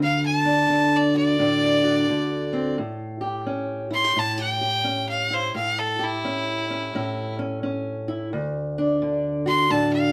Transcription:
0.00 2.77 D2 medium
0.00 0.69 D3 medium
0.00 0.25 F5 medium
0.26 0.97 A5 loud
0.45 1.38 D4 medium
0.70 2.08 D3 medium
0.96 1.16 D5 medium
1.14 1.82 F#4 medium
1.14 2.74 D5 loud
1.39 2.09 A2 medium
1.39 2.75 D4 medium
1.84 2.75 F#4 medium
2.09 2.78 D3 medium
2.53 2.75 C4 medium
2.78 4.16 A2 medium
3.21 3.90 G4 medium
3.46 4.83 C#4 medium
3.91 4.04 E4 medium
3.91 4.20 C6 loud
4.04 4.16 G4 soft
4.16 5.53 A2 medium
4.16 4.37 E4 medium
4.16 4.40 A5 loud
4.37 4.60 G4 medium
4.37 5.08 G5 medium
4.61 5.52 G4 medium
4.84 5.51 C#4 medium
5.09 5.35 F5 medium
5.30 5.52 E4 medium
5.30 5.55 C5 medium
5.55 6.93 A2 medium
5.55 5.80 F5 medium
5.79 6.05 A4 medium
5.99 8.28 G4 medium
6.03 7.36 E4 medium
6.25 6.68 C#4 medium
6.70 6.94 C#4 medium
6.95 8.32 A2 medium
6.95 7.38 C#4 medium
7.39 7.62 C#4 medium
7.63 8.28 C#4 medium
8.08 8.29 E4 medium
8.33 10.12 D2 medium
8.78 9.69 D4 medium
9.02 10.12 D3 medium
9.46 10.12 F#4 medium
9.46 9.72 C6 medium
9.70 10.12 A2 medium
9.70 10.12 D4 medium
9.70 9.92 A5 medium
9.93 10.12 F5 loud

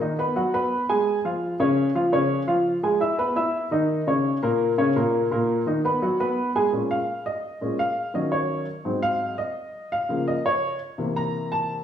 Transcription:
0.01 0.15 D#3 medium
0.01 0.15 D#4 medium
0.01 0.16 D#5 medium
0.19 0.33 B3 medium
0.19 0.33 B4 medium
0.19 0.33 B5 medium
0.36 0.50 F#3 medium
0.36 0.50 F#4 medium
0.36 0.51 F#5 medium
0.54 0.83 B3 medium
0.54 0.83 B4 medium
0.54 0.83 B5 medium
0.89 1.18 G#3 medium
0.89 1.18 G#4 medium
0.89 1.18 G#5 medium
1.25 1.53 F3 medium
1.25 1.53 F4 medium
1.25 1.54 F5 medium
1.60 1.88 C#3 medium
1.60 1.89 C#4 medium
1.60 1.89 C#5 medium
1.95 2.09 F3 medium
1.95 2.09 F4 medium
1.95 2.10 F5 medium
2.12 2.41 C#3 medium
2.12 2.41 C#4 medium
2.12 2.42 C#5 medium
2.47 2.76 F3 medium
2.47 2.77 F4 medium
2.47 2.77 F5 medium
2.83 2.98 G#3 medium
2.83 2.98 G#4 medium
2.83 2.98 G#5 medium
3.01 3.15 E4 medium
3.01 3.15 E5 medium
3.01 3.15 E6 medium
3.18 3.33 B3 medium
3.18 3.33 B4 medium
3.18 3.33 B5 medium
3.36 3.65 E4 medium
3.36 3.65 E5 medium
3.36 3.65 E6 medium
3.71 4.00 D#3 medium
3.71 4.01 D#4 medium
3.71 4.01 D#5 medium
4.07 4.36 C#3 medium
4.07 4.36 C#4 medium
4.07 4.36 C#5 medium
4.42 4.71 A#2 medium
4.42 4.71 A#3 medium
4.42 4.72 A#4 medium
4.78 4.92 C#3 medium
4.78 4.92 C#4 medium
4.78 4.93 C#5 medium
4.96 5.25 A#2 medium
4.96 5.25 A#3 medium
4.96 5.25 A#4 medium
5.31 5.60 A#2 medium
5.31 5.60 A#3 medium
5.31 5.60 A#4 medium
5.67 5.81 D#3 medium
5.67 5.81 D#4 medium
5.67 5.81 D#5 medium
5.85 5.99 B3 medium
5.85 5.99 B4 medium
5.85 5.99 B5 medium
6.02 6.16 F#3 medium
6.02 6.17 F#4 medium
6.02 6.17 F#5 medium
6.20 6.49 B3 medium
6.20 6.49 B4 medium
6.20 6.49 B5 medium
6.55 6.70 G#3 medium
6.55 6.70 G#4 medium
6.55 6.70 G#5 medium
6.72 6.96 A#2 medium
6.72 6.96 G#3 soft
6.72 6.96 C#4 medium
6.91 7.24 F5 medium
7.26 7.75 D#5 medium
7.61 7.77 A#2 soft
7.61 7.77 G#3 soft
7.61 7.78 C#4 medium
7.79 8.12 F5 medium
8.14 8.65 D#3 medium
8.14 8.65 F#3 soft
8.14 8.65 C#4 medium
8.14 8.32 D#5 medium
8.32 8.65 C#5 medium
8.85 9.36 G#2 medium
8.85 9.36 F#3 soft
8.85 9.36 C4 medium
9.03 9.36 F5 medium
9.38 9.88 D#5 medium
9.92 10.25 F5 medium
10.09 10.33 C#3 medium
10.09 10.33 F3 soft
10.09 10.33 A#3 medium
10.28 10.45 D#5 medium
10.46 10.78 C#5 medium
10.98 11.84 C3 medium
10.98 11.84 E3 soft
10.98 11.84 A#3 medium
11.16 11.49 A#5 medium
11.52 11.84 A5 medium

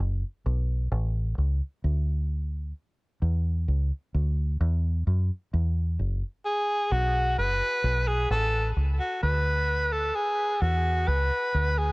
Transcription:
0.00 0.22 F#1 medium
0.46 0.89 B1 loud
0.92 1.35 A1 loud
1.38 1.60 C#2 medium
1.84 2.72 D2 loud
3.22 3.66 E2 medium
3.68 3.91 C#2 medium
4.15 4.58 D2 medium
4.61 5.04 E2 loud
5.07 5.29 F#2 medium
5.54 5.97 E2 loud
5.99 6.22 F#1 medium
6.45 6.93 G#4 loud
6.92 7.35 B1 loud
6.92 7.37 F#4 loud
7.38 7.60 F#1 medium
7.38 8.09 B4 loud
7.84 8.28 B1 medium
8.08 8.30 G#4 loud
8.30 8.74 A1 loud
8.30 8.69 A4 loud
8.77 8.99 C#2 medium
9.00 9.20 F#4 medium
9.23 10.11 D2 loud
9.23 9.94 B4 loud
9.92 10.17 A4 loud
10.15 10.63 G#4 loud
10.62 11.05 E2 medium
10.62 11.09 F#4 loud
11.08 11.30 C#2 medium
11.08 11.80 B4 loud
11.54 11.92 D2 medium
11.78 11.92 G#4 medium

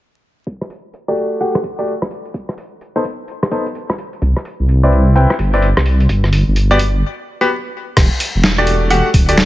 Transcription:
0.47 kick loud
0.47 closed hi-hat medium
0.61 cross-stick soft
0.70 open hi-hat loud
0.94 closed hi-hat medium
1.08 1.38 A3 medium
1.08 1.38 F#4 medium
1.08 1.38 G4 medium
1.08 1.38 D5 medium
1.17 open hi-hat medium
1.41 1.57 A3 medium
1.41 1.57 F#4 medium
1.41 1.57 G4 medium
1.41 1.57 F#5 medium
1.41 closed hi-hat medium
1.55 cross-stick medium
1.64 kick medium
1.64 open hi-hat loud
1.79 1.91 A3 medium
1.79 1.91 F#4 medium
1.79 1.91 G4 medium
1.79 1.91 D5 medium
1.79 closed hi-hat medium
1.87 closed hi-hat medium
2.02 kick loud
2.02 cross-stick medium
2.11 open hi-hat medium
2.25 closed hi-hat soft
2.34 kick loud
2.34 closed hi-hat medium
2.49 cross-stick soft
2.58 open hi-hat loud
2.81 closed hi-hat medium
2.96 3.03 B3 medium
2.96 3.03 D#4 medium
2.96 3.03 A4 medium
2.96 3.03 C5 loud
3.05 kick medium
3.05 open hi-hat medium
3.28 closed hi-hat medium
3.43 cross-stick medium
3.51 3.63 B3 medium
3.51 3.63 D#4 medium
3.51 3.63 A4 medium
3.51 3.63 C5 loud
3.51 kick loud
3.51 open hi-hat loud
3.66 closed hi-hat medium
3.75 closed hi-hat medium
3.90 kick loud
3.90 cross-stick medium
3.98 open hi-hat medium
4.13 closed hi-hat soft
4.22 4.34 C2 loud
4.22 kick loud
4.22 closed hi-hat medium
4.36 cross-stick soft
4.45 open hi-hat loud
4.60 5.26 C2 loud
4.69 closed hi-hat medium
4.83 5.13 C4 medium
4.83 5.14 E4 medium
4.83 5.13 B4 medium
4.83 5.14 D5 medium
4.92 open hi-hat medium
5.15 5.32 C4 medium
5.15 5.32 E4 medium
5.15 5.32 B4 medium
5.15 5.32 G5 loud
5.15 closed hi-hat medium
5.30 cross-stick medium
5.39 5.73 G1 medium
5.39 kick loud
5.39 open hi-hat medium
5.54 5.66 C4 medium
5.54 5.66 E4 medium
5.54 5.66 B4 medium
5.54 5.66 D5 medium
5.54 closed hi-hat medium
5.62 closed hi-hat medium
5.77 6.07 C2 medium
5.77 kick loud
5.77 cross-stick medium
5.86 open hi-hat medium
6.00 closed hi-hat soft
6.09 6.44 G1 medium
6.09 kick loud
6.09 closed hi-hat medium
6.24 cross-stick soft
6.33 open hi-hat loud
6.47 7.03 G1 loud
6.56 closed hi-hat medium
6.71 6.78 B3 medium
6.71 6.78 F#4 medium
6.71 6.78 G4 medium
6.71 6.78 D5 loud
6.79 kick medium
6.79 open hi-hat medium
7.41 7.48 B3 medium
7.41 7.48 F#4 medium
7.41 7.48 G4 medium
7.41 7.48 B4 medium
7.97 8.09 E1 loud
7.97 kick loud
7.97 cross-stick medium
7.97 closed hi-hat medium
7.97 crash medium
8.20 open hi-hat loud
8.35 9.01 E1 medium
8.44 snare loud
8.44 closed hi-hat medium
8.58 8.88 A3 medium
8.58 8.88 F#4 medium
8.58 8.88 G4 medium
8.58 8.88 D5 medium
8.58 claves medium
8.67 open hi-hat medium
8.90 9.07 A3 medium
8.90 9.07 F#4 medium
8.90 9.07 G4 medium
8.90 9.07 F#5 loud
8.90 closed hi-hat medium
9.14 9.45 D1 loud
9.14 kick loud
9.14 open hi-hat loud
9.29 9.41 A3 medium
9.29 9.41 F#4 medium
9.29 9.41 G4 medium
9.29 9.41 D5 medium
9.29 closed hi-hat medium
9.38 snare loud
9.38 closed hi-hat medium

